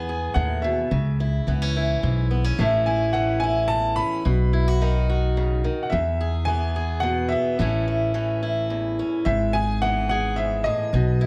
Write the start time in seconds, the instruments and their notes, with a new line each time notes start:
Already playing: upright bass E2, steel-string acoustic guitar E2 B3, upright piano G#5
0.09 steel-string acoustic guitar G#4
0.34 upright bass D#2, steel-string acoustic guitar A2, upright piano F#5
0.62 steel-string acoustic guitar B2, upright piano E5
0.91 upright bass C#2, steel-string acoustic guitar C#3
1.20 steel-string acoustic guitar E4
1.47 upright bass C#2, steel-string acoustic guitar E3 B3
1.62 steel-string acoustic guitar C#4
1.77 steel-string acoustic guitar E4
2.03 upright bass B1, steel-string acoustic guitar G#2
2.31 steel-string acoustic guitar B3
2.44 steel-string acoustic guitar C#4
2.59 upright bass A1, steel-string acoustic guitar A2 E3 A3 C#4 E4, upright piano E5
2.86 steel-string acoustic guitar E4, upright piano G#5
3.13 steel-string acoustic guitar E3 C#4, upright piano F#5
3.40 steel-string acoustic guitar E4, upright piano G#5
3.68 steel-string acoustic guitar E2, upright piano A5
3.96 steel-string acoustic guitar C#4, upright piano B5
4.25 upright bass B1, steel-string acoustic guitar B2
4.53 steel-string acoustic guitar E4
4.68 steel-string acoustic guitar F#4
4.82 steel-string acoustic guitar D#3 D#4
5.09 steel-string acoustic guitar F#4
5.37 steel-string acoustic guitar C#3
5.64 steel-string acoustic guitar D#3
5.83 upright piano F#5
5.90 steel-string acoustic guitar E2, upright bass E2, upright piano E5
6.21 steel-string acoustic guitar G#4
6.45 steel-string acoustic guitar E3 B3, upright piano G#5
6.76 steel-string acoustic guitar G#4
7.00 steel-string acoustic guitar B2, upright piano F#5
7.29 steel-string acoustic guitar B3, upright piano E5
7.59 upright bass A1, steel-string acoustic guitar A2 E3 A3 C#4 E4
7.88 steel-string acoustic guitar E4
8.14 steel-string acoustic guitar E3 C#4
8.43 steel-string acoustic guitar E4
8.70 steel-string acoustic guitar E2
8.99 steel-string acoustic guitar C#4
9.25 upright bass G#1, steel-string acoustic guitar G#2, upright piano E5
9.53 steel-string acoustic guitar G#4, upright piano G#5
9.82 steel-string acoustic guitar E3 B3, upright piano F#5
10.09 steel-string acoustic guitar G#4, upright piano F#5
10.36 steel-string acoustic guitar G#2, upright piano E5
10.64 steel-string acoustic guitar A2, upright piano D#5
10.93 upright bass B1, steel-string acoustic guitar B2
11.21 steel-string acoustic guitar E4